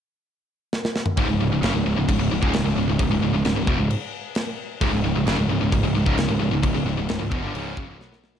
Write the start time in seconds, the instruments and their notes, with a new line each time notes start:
0.73 snare
0.85 snare
0.96 snare
1.06 mid tom
1.17 picked electric bass C#1, distorted electric guitar C#2 G#2, kick, crash
1.28 picked electric bass C#1, distorted electric guitar C#2 G#2
1.39 picked electric bass C#1, distorted electric guitar C#2 G#2
1.52 picked electric bass C#1, distorted electric guitar C#2 G#2
1.62 picked electric bass F#1, distorted electric guitar F#2 C#3, snare, crash
1.74 picked electric bass C#1, distorted electric guitar C#2 G#2
1.85 picked electric bass C#1, distorted electric guitar C#2 G#2
1.96 picked electric bass C#1, distorted electric guitar C#2 G#2
2.08 picked electric bass C#1, distorted electric guitar C#2 G#2, kick, crash
2.19 picked electric bass C#1, distorted electric guitar C#2 G#2
2.31 picked electric bass C#1, distorted electric guitar C#2 G#2
2.41 picked electric bass C#1, distorted electric guitar C#2 G#2, kick
2.53 picked electric bass C#1, distorted electric guitar C#2 G#2, snare, crash
2.65 picked electric bass C#1, distorted electric guitar C#2 G#2
2.77 picked electric bass C#1, distorted electric guitar C#2 G#2
2.88 picked electric bass C#1, distorted electric guitar C#2 G#2
2.99 picked electric bass C#1, distorted electric guitar C#2 G#2, kick, crash
3.10 picked electric bass C#1, distorted electric guitar C#2 G#2
3.21 picked electric bass C#1, distorted electric guitar C#2 G#2
3.33 picked electric bass C#1, distorted electric guitar C#2 G#2
3.45 picked electric bass C#1, distorted electric guitar C#2 G#2, snare, crash
3.55 picked electric bass C#1, distorted electric guitar C#2 G#2
3.67 picked electric bass E1, distorted electric guitar E2 B2, kick
3.78 picked electric bass C#1, distorted electric guitar C#2 G#2
3.90 crash
4.35 snare, crash
4.81 picked electric bass C#1, distorted electric guitar C#2 G#2, kick, crash
4.92 picked electric bass C#1, distorted electric guitar C#2 G#2
5.04 picked electric bass C#1, distorted electric guitar C#2 G#2
5.15 picked electric bass C#1, distorted electric guitar C#2 G#2
5.27 picked electric bass F#1, distorted electric guitar F#2 C#3, snare, crash
5.38 picked electric bass C#1, distorted electric guitar C#2 G#2
5.49 picked electric bass C#1, distorted electric guitar C#2 G#2
5.61 picked electric bass C#1, distorted electric guitar C#2 G#2
5.72 picked electric bass C#1, distorted electric guitar C#2 G#2, kick, crash
5.83 picked electric bass C#1, distorted electric guitar C#2 G#2
5.94 picked electric bass C#1, distorted electric guitar C#2 G#2
6.05 picked electric bass C#1, distorted electric guitar C#2 G#2, kick
6.17 picked electric bass C#1, distorted electric guitar C#2 G#2, snare, crash
6.28 picked electric bass C#1, distorted electric guitar C#2 G#2
6.39 picked electric bass C#1, distorted electric guitar C#2 G#2
6.51 picked electric bass C#1, distorted electric guitar C#2 G#2
6.62 picked electric bass C#1, distorted electric guitar C#2 G#2, kick, crash
6.74 picked electric bass C#1, distorted electric guitar C#2 G#2
6.86 picked electric bass C#1, distorted electric guitar C#2 G#2
6.97 picked electric bass C#1, distorted electric guitar C#2 G#2
7.09 picked electric bass C#1, distorted electric guitar C#2 G#2, snare, crash
7.19 picked electric bass C#1, distorted electric guitar C#2 G#2
7.31 picked electric bass E1, distorted electric guitar E2 B2, kick
7.42 picked electric bass G1, distorted electric guitar G2 D3
7.54 picked electric bass C#1, distorted electric guitar C#2 G#2 C#3, crash
7.77 picked electric bass F#1, distorted electric guitar F#2 C#3, kick
7.88 picked electric bass C#1, distorted electric guitar C#2 G#2
7.99 picked electric bass B1, distorted electric guitar B2 F#3 B3, snare
8.13 snare
8.24 snare
8.35 snare